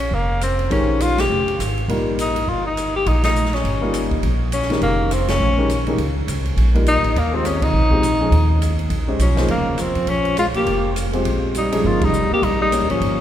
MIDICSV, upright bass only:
0, 0, Header, 1, 3, 480
1, 0, Start_track
1, 0, Tempo, 292969
1, 1165, Time_signature, 4, 2, 24, 8
1, 21637, End_track
2, 0, Start_track
2, 0, Title_t, "Upright bass"
2, 0, Program_c, 0, 32
2, 180, Note_on_c, 0, 29, 77
2, 1107, Note_off_c, 0, 29, 0
2, 1156, Note_on_c, 0, 34, 82
2, 2077, Note_off_c, 0, 34, 0
2, 2115, Note_on_c, 0, 29, 76
2, 2570, Note_off_c, 0, 29, 0
2, 2605, Note_on_c, 0, 32, 73
2, 3056, Note_off_c, 0, 32, 0
2, 3084, Note_on_c, 0, 34, 86
2, 4002, Note_off_c, 0, 34, 0
2, 4046, Note_on_c, 0, 31, 73
2, 4963, Note_off_c, 0, 31, 0
2, 5016, Note_on_c, 0, 34, 81
2, 5929, Note_off_c, 0, 34, 0
2, 5965, Note_on_c, 0, 31, 77
2, 6882, Note_off_c, 0, 31, 0
2, 6923, Note_on_c, 0, 34, 85
2, 7840, Note_off_c, 0, 34, 0
2, 7887, Note_on_c, 0, 29, 77
2, 8801, Note_off_c, 0, 29, 0
2, 8845, Note_on_c, 0, 34, 82
2, 9759, Note_off_c, 0, 34, 0
2, 9796, Note_on_c, 0, 37, 83
2, 10248, Note_off_c, 0, 37, 0
2, 10277, Note_on_c, 0, 36, 82
2, 10728, Note_off_c, 0, 36, 0
2, 10756, Note_on_c, 0, 34, 80
2, 11473, Note_off_c, 0, 34, 0
2, 11515, Note_on_c, 0, 33, 72
2, 11703, Note_off_c, 0, 33, 0
2, 11720, Note_on_c, 0, 39, 81
2, 12633, Note_off_c, 0, 39, 0
2, 12667, Note_on_c, 0, 34, 78
2, 13585, Note_off_c, 0, 34, 0
2, 13618, Note_on_c, 0, 39, 79
2, 14540, Note_off_c, 0, 39, 0
2, 14577, Note_on_c, 0, 34, 80
2, 15034, Note_off_c, 0, 34, 0
2, 15056, Note_on_c, 0, 35, 74
2, 15513, Note_off_c, 0, 35, 0
2, 15530, Note_on_c, 0, 29, 82
2, 16256, Note_off_c, 0, 29, 0
2, 16299, Note_on_c, 0, 41, 69
2, 16486, Note_off_c, 0, 41, 0
2, 16496, Note_on_c, 0, 34, 76
2, 17219, Note_off_c, 0, 34, 0
2, 17460, Note_on_c, 0, 29, 77
2, 18380, Note_off_c, 0, 29, 0
2, 18439, Note_on_c, 0, 34, 85
2, 19349, Note_off_c, 0, 34, 0
2, 19400, Note_on_c, 0, 31, 84
2, 20111, Note_off_c, 0, 31, 0
2, 20350, Note_on_c, 0, 34, 82
2, 20948, Note_off_c, 0, 34, 0
2, 20998, Note_on_c, 0, 39, 58
2, 21140, Note_off_c, 0, 39, 0
2, 21150, Note_on_c, 0, 33, 69
2, 21296, Note_off_c, 0, 33, 0
2, 21306, Note_on_c, 0, 31, 78
2, 21637, Note_off_c, 0, 31, 0
2, 21637, End_track
3, 0, Start_track
3, 0, Title_t, "Muted upright bass strokes"
3, 17273, Note_on_c, 9, 29, 38
3, 17437, Note_off_c, 9, 29, 0
3, 20161, Note_on_c, 9, 29, 36
3, 20325, Note_off_c, 9, 29, 0
3, 21637, End_track
0, 0, End_of_file